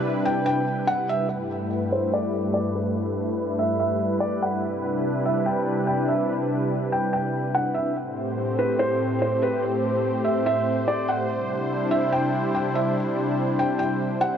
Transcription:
Already playing: C3 G3 D4 E4 B4
0.25 G5
0.46 G5
0.87 F#5
1.09 E5
1.29 G2 G3 A3 E4 B4
1.92 C5
2.14 D5
2.54 D5
2.76 B4
3.59 E5
3.79 E5
4.20 D5
4.42 F#5
4.63 C3 D4
5.26 E5
5.46 G5
5.87 G5
6.08 E5
6.92 G5
7.13 G5
7.55 F#5
7.74 E5
7.96 A2 A3 C4 G4 C5
8.59 B4
8.79 C5
9.22 C5
9.43 B4
10.24 E5
10.46 E5
10.88 D5
11.09 F#5
11.30 C3 G3 D4 E4
11.91 E5
12.13 G5
12.55 G5
12.75 E5
13.59 G5
13.79 G5
14.21 F#5

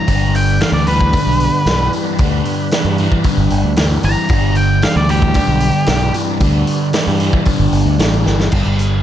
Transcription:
Already playing: A#5
0.07 G1 G2 D3 G3 B3 D4 B4, kick, open hi-hat
0.35 G5, open hi-hat
0.60 G2 E3 F5, snare, open hi-hat
0.72 D2 D5, snare
0.87 G2 E3 B4, open hi-hat
1.01 kick
1.13 G2 D3, kick, open hi-hat
1.27 B1
1.40 open hi-hat
1.66 B1 G2 E3, snare, open hi-hat
1.93 G2 E3, open hi-hat
2.18 D2 G2 D3, kick, open hi-hat
2.45 open hi-hat
2.71 G2 E3, snare, open hi-hat
2.84 G2
2.98 G2 E3, open hi-hat
3.12 kick
3.24 G2 D3, kick, open hi-hat
3.38 G1
3.50 G1, open hi-hat
3.64 D2
3.76 G2 E3, snare, open hi-hat
4.03 G1 G2 E3 A#5, open hi-hat
4.29 G1 G2 D3 G3 B3 D4, kick, open hi-hat
4.55 G5, open hi-hat
4.82 G2 E3 F5, snare, open hi-hat
4.96 D2 D5
5.09 G2 E3 G4, open hi-hat
5.22 kick
5.34 G2 D3, kick, open hi-hat
5.48 B1
5.60 open hi-hat
5.86 B1 G2 E3, snare, open hi-hat
6.14 G2 E3, open hi-hat
6.40 D2 G2 D3, kick, open hi-hat
6.67 open hi-hat
6.93 G2 E3, snare, open hi-hat
7.07 G2, snare
7.20 G2 E3, open hi-hat
7.33 kick
7.45 G2 D3, kick, open hi-hat
7.60 G1
7.73 G1, open hi-hat
7.86 D2
7.99 A1 G2 E3, snare, open hi-hat
8.25 G1 G2 E3, snare
8.39 snare
8.52 G1 G2 D3 G3 B3 D4 B4, kick, crash
8.66 G1
8.79 closed hi-hat

